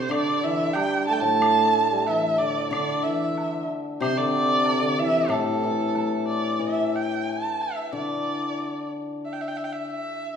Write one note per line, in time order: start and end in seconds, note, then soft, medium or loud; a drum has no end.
0.00 0.13 C5 medium
0.09 1.22 D3 medium
0.09 0.41 D3 medium
0.09 0.45 D5 medium
0.09 high woodblock medium
0.43 0.74 E3 medium
0.43 0.75 E5 medium
0.73 1.06 G3 medium
0.73 1.06 G5 medium
0.73 high woodblock soft
0.73 low woodblock soft
1.06 1.22 A3 medium
1.06 1.14 A5 medium
1.12 1.21 G5 medium
1.20 2.72 A2 medium
1.20 1.88 A3 medium
1.20 2.08 A5 medium
1.42 high woodblock medium
1.91 2.06 G3 medium
2.07 2.38 E3 medium
2.07 2.39 E5 medium
2.07 low woodblock soft
2.38 2.70 D3 medium
2.38 2.70 D5 medium
2.70 4.00 D3 medium
2.70 3.03 D3 medium
2.70 3.04 D5 medium
2.70 high woodblock soft
3.02 3.66 E3 medium
3.02 3.68 E5 medium
3.38 low woodblock soft
4.00 5.29 C3 medium
4.00 4.16 C3 medium
4.00 4.18 C5 medium
4.00 high woodblock medium
4.17 4.78 D3 medium
4.17 5.00 D5 medium
4.66 low woodblock soft
4.82 4.97 D3 medium
4.98 5.28 E3 medium
4.98 5.32 E5 medium
5.28 7.28 A2 medium
5.28 6.23 A2 medium
5.28 6.27 A4 medium
5.28 high woodblock soft
5.64 6.58 E3 soft
5.95 7.29 A3 soft
5.95 low woodblock soft
6.28 6.62 D5 medium
6.59 8.59 E3 soft
6.59 6.97 E5 medium
6.95 7.31 G5 medium
7.29 7.63 A5 medium
7.61 7.94 E5 medium
7.93 9.90 D3 soft
7.93 8.89 D5 medium
9.25 9.34 E5 medium
9.33 9.42 G5 medium
9.41 9.49 E5 medium
9.48 9.58 G5 medium
9.56 9.65 E5 medium
9.64 9.74 G5 medium
9.72 9.90 E5 medium
9.90 10.37 E5 medium